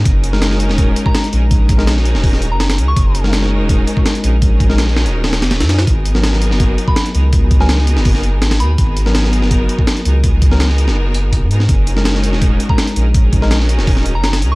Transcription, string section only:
X:1
M:4/4
L:1/8
Q:1/4=165
K:G#m
V:1 name="String section"
[CDFGA]6- [CDFGA] [CDFGA] | [CDFGA]6- [CDFGA] [CDFGA] | [CDFGA]6- [CDFGA] [CDFGA] | [CDFGA]6- [CDFGA] [CDFGA] |
[B,DFGA]6- [B,DFGA] [B,DFGA] | [B,DFGA]6- [B,DFGA] [B,DFGA] | [B,DFGA]6- [B,DFGA] [B,DFGA] | [B,DFGA]6- [B,DFGA] [B,DFGA] |
[CDFGA]6- [CDFGA] [CDFGA] | [CDFGA]6- [CDFGA] [CDFGA] |]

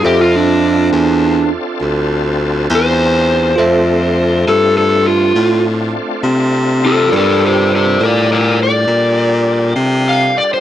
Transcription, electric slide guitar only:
X:1
M:12/8
L:1/16
Q:3/8=68
K:Dm
V:1 name="Electric slide guitar"
G F D8 z8 c6- | c6 A2 A2 F4 z8 [FA]2 | [FA]2 [Gc]2 [Gc]2 [Bd]2 [Bd]2 d8 z2 f2 d c |]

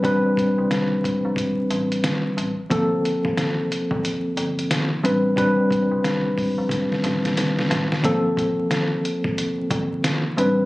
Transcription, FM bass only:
X:1
M:4/4
L:1/16
Q:"Swing 16ths" 1/4=90
K:Aphr
V:1 name="FM bass" clef=bass
A,,,2 z C,,4 B,,, z2 A,,,2 z2 A,,, z | G,,,3 F,,,4 G,,, z2 G,,,2 z2 A,,,2- | A,,,2 z C,,4 B,,, z2 A,,,2 z2 A,,, z | G,,,2 z6 z G,,, G,,,2 z2 A,,,2 |]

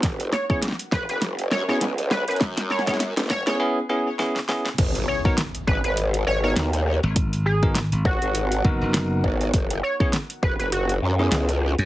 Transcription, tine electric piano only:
X:1
M:4/4
L:1/16
Q:"Swing 16ths" 1/4=101
K:G#m
V:1 name="Tine electric piano"
z3 [B,CEG] z6 z [B,CEG] z4 | z3 [B,CEG] z3 [B,CEG] [B,CEG] z [B,CEG] z [B,CEG] z [B,CEG] z | z3 [B,DFA] z6 z [B,DFA]2 z3 | z3 [B,DFA] z6 [B,DFA]6 |
z3 [B,CEG] z6 z [B,CEG]2 z3 |]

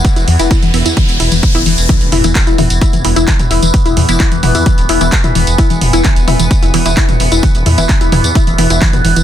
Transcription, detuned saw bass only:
X:1
M:4/4
L:1/16
Q:1/4=130
K:C
V:1 name="Detuned saw bass" clef=bass
z E,,, E,, E,,, z E,,, E,,, E,, z E,,, E,,, E,,, z D,,, E,,, E,,, | z E,,, E,,, E,,, z E,,, E,,, E,,, z F,,, E,,, E,,, z E,,, E,,, E,,, | z E,,, E,, E,,, z E,,, E,,, E,, z D,,, E,,, E,,, z E,,, E,,, E,,, | z E,,, E,,, E,,, z E,,, E,,, E,,, z F,,, E,,, E,,, z E,,, E,,, E,,, |
z E,,, E,, E,,, z E,,, E,,, E,, z D,,, E,,, E,,, z E,,, E,,, E,,, |]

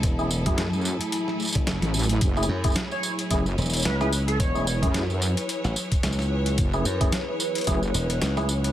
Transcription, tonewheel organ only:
X:1
M:4/4
L:1/16
Q:"Swing 16ths" 1/4=110
K:F#m
V:1 name="Tonewheel organ"
z [A,CEG] z [A,CEG]2 z8 z3 | z [A,CEG] z [A,CEG] z4 [A,CEG] z4 [A,CEG] z2 | z [A,CEG] z [A,CEG]2 z8 z3 | z [A,CEG] z [A,CEG] z4 [A,CEG] z4 [A,CEG] z2 |]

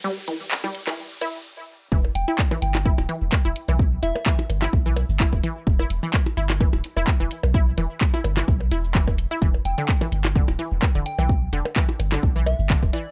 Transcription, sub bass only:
X:1
M:4/4
L:1/16
Q:"Swing 16ths" 1/4=128
K:Em
V:1 name="Sub bass" clef=bass
z16 | E,,, z E,,, z3 G,,,3 D,,, z E,,, z E,,, z B,,,- | B,,,2 E,,, z3 G,,, z B,,,3 G,,, z E,,, z2 | E,,, z E,,, z3 G,,,3 D,,, z E,,, z E,,, z B,,,- |
B,,,2 E,,, z3 G,,, z B,,,2 E,,,4- E,,, z | E,,, z E,,, z3 G,,,3 D,,, z E,,, z E,,, z B,,,- | B,,,2 E,,, z3 G,,, z B,,,3 G,,, z E,,, z2 |]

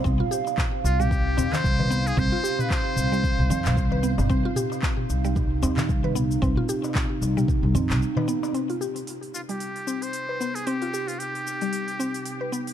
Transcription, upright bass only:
X:1
M:4/4
L:1/16
Q:"Swing 16ths" 1/4=113
K:Cm
V:1 name="Upright bass" clef=bass
C,, z4 z C,,4 E,,2 C,,4 | C,, z4 z C,,3 C,, F,, C,,4 G,,, | C,, z4 z C,,4 E,,2 C,,4 | C,, z4 z C,,3 C,, F,, C,, z4 |
z16 | z16 |]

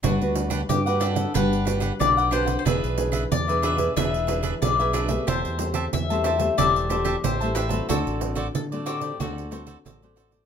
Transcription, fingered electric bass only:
X:1
M:4/4
L:1/16
Q:1/4=92
K:G
V:1 name="Fingered electric bass" clef=bass
G,,, D,,3 G,,4 G,,,4 B,,,4 | E,,, B,,,3 E,,4 E,,,4 B,,,4 | E,,, E,,3 E,,4 E,,,4 A,,,4 | D,, A,,,3 D,4 D,,4 A,,,4 |]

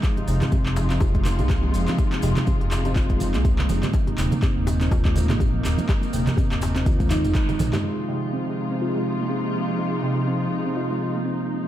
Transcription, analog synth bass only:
X:1
M:4/4
L:1/16
Q:"Swing 16ths" 1/4=123
K:Fm
V:1 name="Analog synth bass" clef=bass
z2 F,,, z2 F,,,3 F,,,3 C,,3 F,,, z | z2 F,,, z2 F,,,3 F,,,3 C,,3 F,,, z | z2 E,,, z2 E,,,3 E,,,3 B,,,3 E,,, z | z2 E,,, z2 E,,,3 E,,3 E,,, z2 B,,, z |
z16 | z16 |]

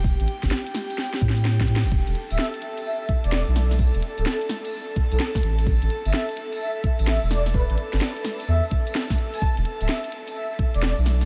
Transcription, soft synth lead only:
X:1
M:4/4
L:1/16
Q:"Swing 16ths" 1/4=128
K:Em
V:1 name="Soft synth lead"
z16 | z3 e e z3 e e z d d z3 | z3 A A z6 A A z3 | z3 e e z3 e e z2 e e d z |
B B z6 e z6 a | z3 e e z3 e e z d d z3 |]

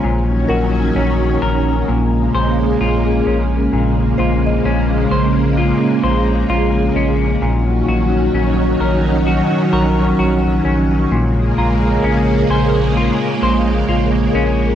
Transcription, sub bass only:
X:1
M:4/4
L:1/16
Q:1/4=65
K:Bbm
V:1 name="Sub bass" clef=bass
B,,,2 B,,,2 B,,,2 B,,,2 B,,,2 B,,,2 B,,,2 B,,,2 | B,,,2 B,,,2 B,,,2 B,,,3 z B,,,2 B,,,2 B,,,2 | B,,,2 B,,,2 B,,,2 B,,,3 z B,,,2 B,,,2 B,,,2 | B,,,2 B,,,2 B,,,2 B,,,3 z B,,,2 B,,,2 B,,,2 |]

